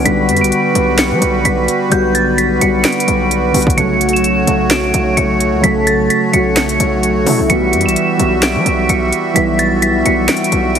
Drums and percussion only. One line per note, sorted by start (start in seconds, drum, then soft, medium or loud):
0.06 closed hi-hat medium
0.29 closed hi-hat medium
0.37 closed hi-hat medium
0.44 closed hi-hat medium
0.52 closed hi-hat medium
0.75 closed hi-hat medium
0.99 finger snap medium
0.99 snare loud
0.99 closed hi-hat medium
1.22 closed hi-hat medium
1.45 closed hi-hat medium
1.68 closed hi-hat medium
1.92 closed hi-hat medium
2.15 closed hi-hat medium
2.38 closed hi-hat medium
2.61 closed hi-hat medium
2.85 finger snap loud
2.85 snare loud
2.85 closed hi-hat soft
2.92 closed hi-hat medium
3.00 closed hi-hat medium
3.08 closed hi-hat medium
3.31 closed hi-hat medium
3.54 closed hi-hat soft
3.54 open hi-hat medium
3.62 closed hi-hat medium
3.67 kick medium
3.67 closed hi-hat medium
3.78 closed hi-hat medium
4.01 closed hi-hat medium
4.09 closed hi-hat medium
4.16 closed hi-hat medium
4.24 closed hi-hat medium
4.47 closed hi-hat medium
4.71 finger snap loud
4.71 snare loud
4.71 closed hi-hat medium
4.94 closed hi-hat medium
5.17 closed hi-hat medium
5.40 closed hi-hat medium
5.64 closed hi-hat medium
5.87 closed hi-hat medium
6.10 closed hi-hat medium
6.33 closed hi-hat medium
6.57 finger snap medium
6.57 snare loud
6.57 closed hi-hat medium
6.69 closed hi-hat medium
6.80 closed hi-hat medium
7.03 closed hi-hat medium
7.26 open hi-hat medium
7.50 closed hi-hat medium
7.73 closed hi-hat medium
7.81 closed hi-hat medium
7.89 closed hi-hat medium
7.96 closed hi-hat medium
8.20 closed hi-hat medium
8.43 finger snap loud
8.43 snare loud
8.43 closed hi-hat medium
8.66 closed hi-hat medium
8.89 closed hi-hat medium
9.13 closed hi-hat medium
9.36 closed hi-hat medium
9.59 closed hi-hat medium
9.82 closed hi-hat medium
10.06 closed hi-hat medium
10.29 finger snap medium
10.29 snare loud
10.29 closed hi-hat soft
10.37 closed hi-hat medium
10.44 closed hi-hat medium
10.52 closed hi-hat medium
10.75 closed hi-hat medium